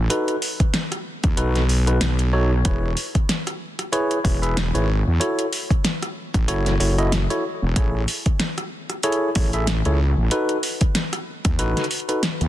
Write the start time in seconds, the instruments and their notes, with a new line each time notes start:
0.10 tine electric piano D#4 F#4 A4 B4, closed hi-hat
0.28 closed hi-hat
0.42 open hi-hat
0.60 kick, closed hi-hat
0.74 snare, closed hi-hat
0.92 cross-stick, closed hi-hat
1.24 wobble bass D#2, kick, cross-stick, closed hi-hat
1.37 wobble bass B1, tine electric piano D#4 F#4 A4 B4, closed hi-hat
1.56 snare, closed hi-hat
1.69 open hi-hat
1.87 tine electric piano D#4 F#4 A4 B4, closed hi-hat
2.01 wobble bass B1, snare, closed hi-hat
2.19 closed hi-hat
2.33 tine electric piano D#4 F#4 A4 C#5
2.65 wobble bass E1, tine electric piano E4 G#4 B4 C#5, kick, closed hi-hat
2.97 open hi-hat
3.15 kick, closed hi-hat
3.29 snare, closed hi-hat
3.47 cross-stick, closed hi-hat
3.79 cross-stick, closed hi-hat
3.92 tine electric piano E4 G#4 B4 C#5, closed hi-hat
4.11 closed hi-hat
4.24 wobble bass E1, tine electric piano E4 G#4 B4 C#5, kick, open hi-hat
4.42 tine electric piano E4 G#4 B4 E5, closed hi-hat
4.57 snare, closed hi-hat
4.74 wobble bass G#1, tine electric piano E4 G#4 B4 C#5, closed hi-hat
5.07 wobble bass E2
5.20 tine electric piano E4 F#4 A4 C#5, closed hi-hat
5.39 closed hi-hat
5.53 open hi-hat
5.71 kick, closed hi-hat
5.85 snare, closed hi-hat
6.02 cross-stick, closed hi-hat
6.34 wobble bass A1, kick, cross-stick, closed hi-hat
6.48 wobble bass F#1, tine electric piano E4 F#4 A4 C#5, closed hi-hat
6.66 snare, closed hi-hat
6.80 wobble bass F#1, tine electric piano E4 F#4 A4 C#5, open hi-hat
6.98 tine electric piano E4 F#4 A4 D#5, closed hi-hat
7.12 snare, closed hi-hat
7.30 tine electric piano E4 F#4 A4 C#5, closed hi-hat
7.62 wobble bass E1
7.76 wobble bass A1, tine electric piano E4 G#4 A4 C#5, kick, closed hi-hat
8.08 open hi-hat
8.26 kick, closed hi-hat
8.40 snare, closed hi-hat
8.58 cross-stick, closed hi-hat
8.90 cross-stick, closed hi-hat
9.03 tine electric piano E4 G#4 A4 C#5, closed hi-hat
9.12 closed hi-hat
9.35 wobble bass A1, tine electric piano E4 G#4 A4 C#5, kick, open hi-hat
9.53 tine electric piano E4 G#4 A4 E5, closed hi-hat
9.67 snare, closed hi-hat
9.85 wobble bass C#2, tine electric piano E4 G#4 A4 C#5, closed hi-hat
10.17 wobble bass A1
10.31 tine electric piano D#4 F#4 A4 B4, closed hi-hat
10.49 closed hi-hat
10.63 open hi-hat
10.81 kick, closed hi-hat
10.95 snare, closed hi-hat
11.13 cross-stick, closed hi-hat
11.45 wobble bass D#2, kick, cross-stick, closed hi-hat
11.59 wobble bass A1, tine electric piano D#4 F#4 A4 B4, closed hi-hat
11.77 snare, closed hi-hat
11.84 closed hi-hat
11.91 closed hi-hat, open hi-hat
12.00 closed hi-hat
12.09 tine electric piano D#4 F#4 A4 B4, closed hi-hat
12.23 snare, closed hi-hat
12.41 wobble bass D#2, closed hi-hat